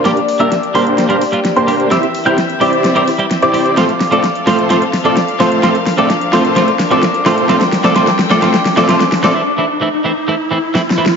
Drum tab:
HH |x--x--o--x--x--x--o--x--x--x--o--x--x--x--o--x--|x--x--o--x--x--x--o--x--x--x--o--x--x--x--o--x--|x--x--o--x--x--x--o--x--x--x--o--x--x--x--o--x--|x--x--o--x--x--x--o--x--x--x--o--x--x--x--o--x--|
SD |o-----------o-----------o-----------o-----------|o-----------o-----------o-----------o-----------|o-----o-----o-----o-----o-----o-----o-----o-----|o-----o-----o-----o-----o-----o-----o-----o-----|

HH |x--x--o--x--x--x--o--x--x--x--o--x--x--x--o--x--|------------------------------------------------|
SD |o--o--o--o--o--o--o--o--o--o--o--o--o--o--o--o--|------------------------------------o---o---o---|